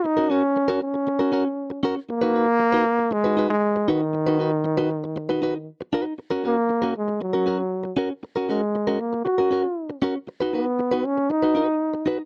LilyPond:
<<
  \new Staff \with { instrumentName = "Clean electric guitar" } { \time 4/4 \key ges \major \tempo 4 = 117 r16 <des' ges' bes'>16 <des' ges' bes'>16 r8 <des' ges' bes'>16 r8. <des' ges' bes'>16 <des' ges' bes'>16 r8. <des' ges' bes'>16 r16 | r16 <ees' ges' ces''>16 <ees' ges' ces''>16 r8 <ees' ges' ces''>16 r8. <ees' ges' ces''>16 <ees' ges' ces''>16 r8. <ees' ges' ces''>16 r16 | r16 <ees' ges' ces''>16 <ees' ges' ces''>16 r8 <ees' ges' ces''>16 r8. <ees' ges' ces''>16 <ees' ges' ces''>16 r8. <ees' ges' ces''>8 | r16 <des' ges' bes'>16 <des' ges' bes'>16 r8 <des' ges' bes'>16 r8. <des' ges' bes'>16 <des' ges' bes'>16 r8. <des' ges' bes'>16 r16 |
r16 <des' ges' bes'>16 <des' ges' bes'>16 r8 <des' ges' bes'>16 r8. <des' ges' bes'>16 <des' ges' bes'>16 r8. <des' ges' bes'>16 r16 | r16 <ees' ges' ces''>16 <ees' ges' ces''>16 r8 <ees' ges' ces''>16 r8. <ees' ges' ces''>16 <ees' ges' ces''>8 r8 <ees' ges' ces''>16 r16 | }
  \new Staff \with { instrumentName = "Trombone" } { \time 4/4 \key ges \major ees'8 des'4 des'2 r8 | bes2 aes8. aes8. ees8~ | ees2. r4 | r8 bes4 aes8 ges4. r8 |
r8 aes4 bes8 ges'4. r8 | r8 ces'4 des'8 ees'4. r8 | }
>>